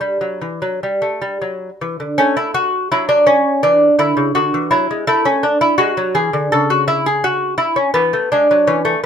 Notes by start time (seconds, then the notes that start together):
Already playing: D4
0.01 G3
0.21 F#3
0.41 E3
0.62 F#3
0.83 G3
1.02 A3
1.22 G3
1.42 F#3
1.81 E3
2.00 D3
2.18 A3 C#4
2.37 E4
2.54 F#4
2.92 F#3 E4
3.09 D4
3.27 C#4
3.63 E3 D4
3.99 D3 E4
4.17 C#3
4.35 D3 F#4
4.54 E3
4.71 F#3 E4
4.91 G#3
5.07 A3 E4
5.25 C#4
5.43 D4
5.61 E4
5.78 G#3 F#4
5.97 F#3
6.15 E3 G#4
6.33 D3
6.52 C#3 A4
6.70 F#4
6.88 E4
7.06 G#4
7.24 F#4
7.58 E4
7.76 C#4
7.94 E3 B3
8.13 A3
8.32 G#3 D4
8.51 F#3
8.67 E3 C#4
8.85 A3